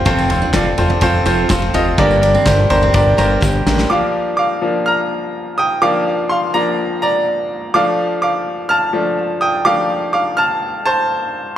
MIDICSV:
0, 0, Header, 1, 5, 480
1, 0, Start_track
1, 0, Tempo, 479616
1, 62, Time_signature, 4, 2, 24, 8
1, 11585, End_track
2, 0, Start_track
2, 0, Title_t, "Grand piano"
2, 0, Program_c, 0, 0
2, 0, Control_c, 0, 64, 127
2, 60, Note_on_c, 0, 60, 122
2, 60, Note_on_c, 0, 65, 99
2, 60, Note_on_c, 0, 69, 109
2, 63, Note_on_c, 0, 72, 127
2, 76, Control_c, 0, 64, 0
2, 240, Note_off_c, 0, 60, 0
2, 240, Note_off_c, 0, 65, 0
2, 240, Note_off_c, 0, 69, 0
2, 242, Note_off_c, 0, 72, 0
2, 245, Control_c, 0, 64, 127
2, 305, Note_on_c, 0, 60, 79
2, 305, Note_on_c, 0, 69, 75
2, 306, Note_on_c, 0, 65, 79
2, 307, Note_on_c, 0, 72, 92
2, 483, Note_off_c, 0, 60, 0
2, 483, Note_off_c, 0, 65, 0
2, 483, Note_off_c, 0, 69, 0
2, 484, Note_off_c, 0, 72, 0
2, 537, Note_on_c, 0, 60, 78
2, 537, Note_on_c, 0, 69, 78
2, 542, Note_on_c, 0, 65, 80
2, 542, Note_on_c, 0, 74, 98
2, 719, Note_off_c, 0, 60, 0
2, 719, Note_off_c, 0, 69, 0
2, 721, Note_off_c, 0, 65, 0
2, 722, Note_off_c, 0, 74, 0
2, 784, Note_on_c, 0, 60, 84
2, 785, Note_on_c, 0, 69, 84
2, 786, Note_on_c, 0, 65, 84
2, 787, Note_on_c, 0, 72, 98
2, 963, Note_off_c, 0, 60, 0
2, 963, Note_off_c, 0, 69, 0
2, 964, Note_off_c, 0, 65, 0
2, 964, Note_off_c, 0, 72, 0
2, 1022, Note_on_c, 0, 60, 116
2, 1023, Note_on_c, 0, 69, 109
2, 1025, Note_on_c, 0, 65, 104
2, 1026, Note_on_c, 0, 72, 117
2, 1202, Note_off_c, 0, 60, 0
2, 1203, Note_off_c, 0, 65, 0
2, 1203, Note_off_c, 0, 69, 0
2, 1204, Note_off_c, 0, 72, 0
2, 1259, Note_on_c, 0, 60, 95
2, 1259, Note_on_c, 0, 65, 78
2, 1260, Note_on_c, 0, 72, 101
2, 1262, Note_on_c, 0, 69, 86
2, 1441, Note_off_c, 0, 60, 0
2, 1441, Note_off_c, 0, 65, 0
2, 1441, Note_off_c, 0, 72, 0
2, 1442, Note_off_c, 0, 69, 0
2, 1506, Note_on_c, 0, 60, 87
2, 1507, Note_on_c, 0, 65, 81
2, 1509, Note_on_c, 0, 72, 95
2, 1510, Note_on_c, 0, 69, 74
2, 1684, Note_off_c, 0, 60, 0
2, 1685, Note_off_c, 0, 65, 0
2, 1686, Note_off_c, 0, 72, 0
2, 1687, Note_off_c, 0, 69, 0
2, 1745, Note_on_c, 0, 60, 87
2, 1745, Note_on_c, 0, 69, 85
2, 1747, Note_on_c, 0, 65, 81
2, 1749, Note_on_c, 0, 75, 108
2, 1924, Note_off_c, 0, 60, 0
2, 1924, Note_off_c, 0, 69, 0
2, 1925, Note_off_c, 0, 65, 0
2, 1926, Note_off_c, 0, 75, 0
2, 1989, Note_on_c, 0, 43, 82
2, 1990, Note_on_c, 0, 62, 116
2, 1990, Note_on_c, 0, 67, 102
2, 1991, Note_on_c, 0, 70, 108
2, 1993, Note_on_c, 0, 74, 127
2, 1998, Control_c, 0, 64, 0
2, 2167, Note_off_c, 0, 62, 0
2, 2167, Note_off_c, 0, 67, 0
2, 2168, Note_off_c, 0, 70, 0
2, 2168, Note_off_c, 0, 74, 0
2, 2172, Control_c, 0, 64, 127
2, 2218, Note_on_c, 0, 62, 91
2, 2218, Note_on_c, 0, 67, 72
2, 2222, Note_on_c, 0, 70, 76
2, 2222, Note_on_c, 0, 74, 93
2, 2401, Note_off_c, 0, 62, 0
2, 2401, Note_off_c, 0, 67, 0
2, 2403, Note_off_c, 0, 70, 0
2, 2403, Note_off_c, 0, 74, 0
2, 2460, Note_on_c, 0, 62, 79
2, 2461, Note_on_c, 0, 70, 77
2, 2461, Note_on_c, 0, 72, 93
2, 2462, Note_on_c, 0, 67, 79
2, 2642, Note_off_c, 0, 62, 0
2, 2643, Note_off_c, 0, 67, 0
2, 2643, Note_off_c, 0, 70, 0
2, 2643, Note_off_c, 0, 72, 0
2, 2669, Note_off_c, 0, 43, 0
2, 2703, Note_on_c, 0, 62, 91
2, 2705, Note_on_c, 0, 67, 78
2, 2705, Note_on_c, 0, 70, 93
2, 2705, Note_on_c, 0, 72, 114
2, 2884, Note_off_c, 0, 62, 0
2, 2885, Note_off_c, 0, 67, 0
2, 2885, Note_off_c, 0, 70, 0
2, 2885, Note_off_c, 0, 72, 0
2, 2942, Note_on_c, 0, 62, 105
2, 2943, Note_on_c, 0, 70, 105
2, 2946, Note_on_c, 0, 67, 99
2, 2947, Note_on_c, 0, 74, 122
2, 3123, Note_off_c, 0, 62, 0
2, 3124, Note_off_c, 0, 70, 0
2, 3125, Note_off_c, 0, 67, 0
2, 3126, Note_off_c, 0, 74, 0
2, 3175, Note_on_c, 0, 82, 88
2, 3183, Note_on_c, 0, 70, 85
2, 3184, Note_on_c, 0, 62, 92
2, 3186, Note_on_c, 0, 67, 89
2, 3186, Note_on_c, 0, 72, 101
2, 3194, Note_on_c, 0, 74, 68
2, 3364, Note_off_c, 0, 70, 0
2, 3365, Note_off_c, 0, 62, 0
2, 3365, Note_off_c, 0, 72, 0
2, 3366, Note_off_c, 0, 67, 0
2, 3430, Note_on_c, 0, 79, 68
2, 3657, Note_off_c, 0, 79, 0
2, 3667, Note_on_c, 0, 70, 69
2, 3674, Note_on_c, 0, 67, 64
2, 3862, Note_off_c, 0, 82, 0
2, 3872, Note_off_c, 0, 74, 0
2, 3901, Note_on_c, 0, 86, 101
2, 3905, Note_on_c, 0, 53, 64
2, 3911, Note_on_c, 0, 58, 54
2, 3918, Note_on_c, 0, 62, 71
2, 3921, Control_c, 0, 64, 0
2, 3921, Note_on_c, 0, 77, 78
2, 4080, Control_c, 0, 64, 127
2, 4124, Note_off_c, 0, 70, 0
2, 4128, Note_off_c, 0, 67, 0
2, 4226, Note_off_c, 0, 53, 0
2, 4230, Note_off_c, 0, 58, 0
2, 4233, Note_off_c, 0, 62, 0
2, 4357, Note_off_c, 0, 86, 0
2, 4362, Note_off_c, 0, 77, 0
2, 4372, Note_on_c, 0, 86, 95
2, 4393, Note_on_c, 0, 77, 75
2, 4620, Note_on_c, 0, 53, 55
2, 4626, Note_on_c, 0, 58, 47
2, 4630, Note_on_c, 0, 62, 56
2, 4838, Note_off_c, 0, 77, 0
2, 4840, Note_off_c, 0, 53, 0
2, 4844, Note_off_c, 0, 58, 0
2, 4846, Note_off_c, 0, 62, 0
2, 4862, Note_on_c, 0, 89, 98
2, 4876, Note_off_c, 0, 86, 0
2, 4879, Note_on_c, 0, 82, 74
2, 5554, Note_off_c, 0, 82, 0
2, 5581, Note_on_c, 0, 87, 100
2, 5597, Note_on_c, 0, 79, 73
2, 5608, Note_off_c, 0, 89, 0
2, 5636, Note_off_c, 0, 87, 0
2, 5650, Note_off_c, 0, 79, 0
2, 5822, Note_on_c, 0, 53, 66
2, 5822, Note_on_c, 0, 86, 109
2, 5828, Note_on_c, 0, 58, 60
2, 5834, Note_on_c, 0, 62, 72
2, 5834, Note_on_c, 0, 77, 79
2, 6145, Note_off_c, 0, 53, 0
2, 6148, Note_off_c, 0, 58, 0
2, 6151, Note_off_c, 0, 62, 0
2, 6278, Note_off_c, 0, 77, 0
2, 6300, Note_on_c, 0, 84, 87
2, 6317, Note_on_c, 0, 77, 68
2, 6320, Note_off_c, 0, 86, 0
2, 6537, Note_off_c, 0, 77, 0
2, 6545, Note_on_c, 0, 82, 106
2, 6548, Note_on_c, 0, 53, 57
2, 6552, Note_off_c, 0, 84, 0
2, 6554, Note_on_c, 0, 58, 52
2, 6557, Note_on_c, 0, 62, 59
2, 6559, Note_on_c, 0, 74, 75
2, 6765, Note_off_c, 0, 53, 0
2, 6768, Note_off_c, 0, 58, 0
2, 6770, Note_off_c, 0, 62, 0
2, 6993, Note_off_c, 0, 82, 0
2, 7001, Note_off_c, 0, 74, 0
2, 7027, Note_on_c, 0, 82, 96
2, 7035, Note_on_c, 0, 74, 80
2, 7712, Note_off_c, 0, 74, 0
2, 7747, Note_on_c, 0, 86, 111
2, 7749, Note_on_c, 0, 53, 71
2, 7751, Note_on_c, 0, 57, 59
2, 7759, Note_on_c, 0, 62, 73
2, 7763, Control_c, 0, 64, 0
2, 7763, Note_on_c, 0, 77, 93
2, 7769, Note_off_c, 0, 82, 0
2, 7966, Control_c, 0, 64, 127
2, 8203, Note_off_c, 0, 77, 0
2, 8211, Note_off_c, 0, 86, 0
2, 8226, Note_on_c, 0, 86, 92
2, 8239, Note_on_c, 0, 77, 68
2, 8674, Note_off_c, 0, 86, 0
2, 8681, Note_off_c, 0, 77, 0
2, 8697, Note_on_c, 0, 89, 113
2, 8711, Note_on_c, 0, 81, 90
2, 8921, Note_off_c, 0, 53, 0
2, 8927, Note_off_c, 0, 57, 0
2, 8931, Note_off_c, 0, 62, 0
2, 8936, Note_on_c, 0, 53, 54
2, 8942, Note_on_c, 0, 57, 48
2, 8946, Note_on_c, 0, 62, 61
2, 9158, Note_off_c, 0, 53, 0
2, 9161, Note_off_c, 0, 57, 0
2, 9163, Note_off_c, 0, 62, 0
2, 9390, Note_off_c, 0, 81, 0
2, 9416, Note_on_c, 0, 87, 95
2, 9427, Note_on_c, 0, 79, 75
2, 9444, Note_off_c, 0, 89, 0
2, 9471, Note_off_c, 0, 87, 0
2, 9481, Note_off_c, 0, 79, 0
2, 9656, Note_on_c, 0, 53, 63
2, 9657, Note_on_c, 0, 86, 111
2, 9662, Note_on_c, 0, 57, 55
2, 9667, Note_on_c, 0, 62, 69
2, 9670, Note_on_c, 0, 77, 94
2, 10109, Note_off_c, 0, 86, 0
2, 10115, Note_off_c, 0, 77, 0
2, 10138, Note_on_c, 0, 86, 86
2, 10147, Note_on_c, 0, 77, 80
2, 10371, Note_off_c, 0, 77, 0
2, 10377, Note_on_c, 0, 89, 109
2, 10390, Note_off_c, 0, 86, 0
2, 10390, Note_on_c, 0, 81, 89
2, 10835, Note_off_c, 0, 81, 0
2, 10864, Note_on_c, 0, 81, 108
2, 10873, Note_on_c, 0, 72, 81
2, 10877, Note_off_c, 0, 89, 0
2, 11541, Note_off_c, 0, 53, 0
2, 11544, Note_off_c, 0, 57, 0
2, 11547, Note_off_c, 0, 62, 0
2, 11550, Note_off_c, 0, 72, 0
2, 11585, Note_off_c, 0, 81, 0
2, 11585, End_track
3, 0, Start_track
3, 0, Title_t, "Steel-string acoustic guitar"
3, 0, Program_c, 1, 25
3, 54, Note_on_c, 1, 60, 95
3, 287, Note_off_c, 1, 60, 0
3, 417, Note_on_c, 1, 62, 72
3, 528, Note_off_c, 1, 62, 0
3, 532, Note_on_c, 1, 60, 81
3, 652, Note_off_c, 1, 60, 0
3, 897, Note_on_c, 1, 62, 67
3, 1015, Note_off_c, 1, 62, 0
3, 1257, Note_on_c, 1, 65, 91
3, 1489, Note_off_c, 1, 65, 0
3, 1742, Note_on_c, 1, 65, 85
3, 1858, Note_off_c, 1, 65, 0
3, 1982, Note_on_c, 1, 58, 99
3, 2212, Note_off_c, 1, 58, 0
3, 2346, Note_on_c, 1, 60, 76
3, 2461, Note_off_c, 1, 60, 0
3, 2472, Note_on_c, 1, 62, 85
3, 2584, Note_off_c, 1, 62, 0
3, 2828, Note_on_c, 1, 60, 80
3, 2942, Note_off_c, 1, 60, 0
3, 3183, Note_on_c, 1, 58, 90
3, 3414, Note_off_c, 1, 58, 0
3, 3670, Note_on_c, 1, 62, 89
3, 3784, Note_off_c, 1, 62, 0
3, 11585, End_track
4, 0, Start_track
4, 0, Title_t, "Analog synth bass"
4, 0, Program_c, 2, 38
4, 60, Note_on_c, 2, 29, 112
4, 456, Note_off_c, 2, 29, 0
4, 538, Note_on_c, 2, 29, 106
4, 737, Note_off_c, 2, 29, 0
4, 781, Note_on_c, 2, 29, 95
4, 980, Note_off_c, 2, 29, 0
4, 1020, Note_on_c, 2, 29, 104
4, 1219, Note_off_c, 2, 29, 0
4, 1258, Note_on_c, 2, 29, 106
4, 1458, Note_off_c, 2, 29, 0
4, 1502, Note_on_c, 2, 29, 96
4, 1701, Note_off_c, 2, 29, 0
4, 1739, Note_on_c, 2, 29, 87
4, 1939, Note_off_c, 2, 29, 0
4, 1984, Note_on_c, 2, 31, 115
4, 2379, Note_off_c, 2, 31, 0
4, 2464, Note_on_c, 2, 31, 114
4, 2662, Note_off_c, 2, 31, 0
4, 2711, Note_on_c, 2, 31, 101
4, 2907, Note_off_c, 2, 31, 0
4, 2948, Note_on_c, 2, 31, 111
4, 3145, Note_off_c, 2, 31, 0
4, 3188, Note_on_c, 2, 31, 97
4, 3385, Note_off_c, 2, 31, 0
4, 3427, Note_on_c, 2, 31, 103
4, 3624, Note_off_c, 2, 31, 0
4, 3669, Note_on_c, 2, 33, 90
4, 3866, Note_off_c, 2, 33, 0
4, 11585, End_track
5, 0, Start_track
5, 0, Title_t, "Drums"
5, 60, Note_on_c, 9, 36, 112
5, 61, Note_on_c, 9, 51, 66
5, 160, Note_off_c, 9, 36, 0
5, 161, Note_off_c, 9, 51, 0
5, 184, Note_on_c, 9, 51, 43
5, 190, Note_on_c, 9, 54, 48
5, 284, Note_off_c, 9, 51, 0
5, 290, Note_off_c, 9, 54, 0
5, 299, Note_on_c, 9, 43, 63
5, 299, Note_on_c, 9, 51, 69
5, 316, Note_on_c, 9, 54, 47
5, 399, Note_off_c, 9, 43, 0
5, 399, Note_off_c, 9, 51, 0
5, 417, Note_off_c, 9, 54, 0
5, 425, Note_on_c, 9, 54, 31
5, 525, Note_off_c, 9, 54, 0
5, 536, Note_on_c, 9, 36, 98
5, 536, Note_on_c, 9, 38, 100
5, 538, Note_on_c, 9, 51, 78
5, 539, Note_on_c, 9, 54, 83
5, 540, Note_on_c, 9, 39, 82
5, 636, Note_off_c, 9, 36, 0
5, 637, Note_off_c, 9, 38, 0
5, 638, Note_off_c, 9, 51, 0
5, 639, Note_off_c, 9, 54, 0
5, 640, Note_off_c, 9, 39, 0
5, 777, Note_on_c, 9, 51, 60
5, 780, Note_on_c, 9, 43, 68
5, 785, Note_on_c, 9, 54, 43
5, 877, Note_off_c, 9, 51, 0
5, 880, Note_off_c, 9, 43, 0
5, 886, Note_off_c, 9, 54, 0
5, 903, Note_on_c, 9, 43, 65
5, 1003, Note_off_c, 9, 43, 0
5, 1011, Note_on_c, 9, 51, 85
5, 1019, Note_on_c, 9, 36, 103
5, 1020, Note_on_c, 9, 54, 58
5, 1111, Note_off_c, 9, 51, 0
5, 1119, Note_off_c, 9, 36, 0
5, 1120, Note_off_c, 9, 54, 0
5, 1264, Note_on_c, 9, 51, 59
5, 1267, Note_on_c, 9, 54, 63
5, 1364, Note_off_c, 9, 51, 0
5, 1367, Note_off_c, 9, 54, 0
5, 1498, Note_on_c, 9, 51, 69
5, 1499, Note_on_c, 9, 38, 101
5, 1501, Note_on_c, 9, 36, 109
5, 1502, Note_on_c, 9, 54, 102
5, 1503, Note_on_c, 9, 39, 76
5, 1599, Note_off_c, 9, 51, 0
5, 1600, Note_off_c, 9, 38, 0
5, 1601, Note_off_c, 9, 36, 0
5, 1602, Note_off_c, 9, 54, 0
5, 1603, Note_off_c, 9, 39, 0
5, 1620, Note_on_c, 9, 51, 41
5, 1720, Note_off_c, 9, 51, 0
5, 1743, Note_on_c, 9, 43, 57
5, 1744, Note_on_c, 9, 51, 58
5, 1746, Note_on_c, 9, 54, 54
5, 1843, Note_off_c, 9, 43, 0
5, 1844, Note_off_c, 9, 51, 0
5, 1846, Note_off_c, 9, 54, 0
5, 1983, Note_on_c, 9, 51, 68
5, 1984, Note_on_c, 9, 36, 101
5, 2083, Note_off_c, 9, 51, 0
5, 2084, Note_off_c, 9, 36, 0
5, 2107, Note_on_c, 9, 54, 47
5, 2207, Note_off_c, 9, 54, 0
5, 2230, Note_on_c, 9, 51, 70
5, 2232, Note_on_c, 9, 54, 50
5, 2330, Note_off_c, 9, 51, 0
5, 2332, Note_off_c, 9, 54, 0
5, 2350, Note_on_c, 9, 54, 37
5, 2450, Note_off_c, 9, 54, 0
5, 2462, Note_on_c, 9, 36, 104
5, 2466, Note_on_c, 9, 38, 103
5, 2468, Note_on_c, 9, 51, 84
5, 2469, Note_on_c, 9, 39, 82
5, 2473, Note_on_c, 9, 54, 85
5, 2562, Note_off_c, 9, 36, 0
5, 2566, Note_off_c, 9, 38, 0
5, 2568, Note_off_c, 9, 51, 0
5, 2569, Note_off_c, 9, 39, 0
5, 2573, Note_off_c, 9, 54, 0
5, 2703, Note_on_c, 9, 51, 61
5, 2706, Note_on_c, 9, 43, 69
5, 2718, Note_on_c, 9, 54, 45
5, 2803, Note_off_c, 9, 51, 0
5, 2806, Note_off_c, 9, 43, 0
5, 2818, Note_off_c, 9, 54, 0
5, 2831, Note_on_c, 9, 43, 66
5, 2931, Note_off_c, 9, 43, 0
5, 2940, Note_on_c, 9, 51, 78
5, 2946, Note_on_c, 9, 36, 118
5, 2959, Note_on_c, 9, 54, 51
5, 3040, Note_off_c, 9, 51, 0
5, 3046, Note_off_c, 9, 36, 0
5, 3059, Note_off_c, 9, 54, 0
5, 3188, Note_on_c, 9, 51, 59
5, 3197, Note_on_c, 9, 54, 63
5, 3288, Note_off_c, 9, 51, 0
5, 3298, Note_off_c, 9, 54, 0
5, 3427, Note_on_c, 9, 36, 105
5, 3428, Note_on_c, 9, 38, 54
5, 3430, Note_on_c, 9, 54, 109
5, 3527, Note_off_c, 9, 36, 0
5, 3528, Note_off_c, 9, 38, 0
5, 3530, Note_off_c, 9, 54, 0
5, 3669, Note_on_c, 9, 38, 96
5, 3671, Note_on_c, 9, 54, 54
5, 3769, Note_off_c, 9, 38, 0
5, 3771, Note_off_c, 9, 54, 0
5, 3785, Note_on_c, 9, 38, 86
5, 3796, Note_on_c, 9, 54, 34
5, 3885, Note_off_c, 9, 38, 0
5, 3896, Note_off_c, 9, 54, 0
5, 11585, End_track
0, 0, End_of_file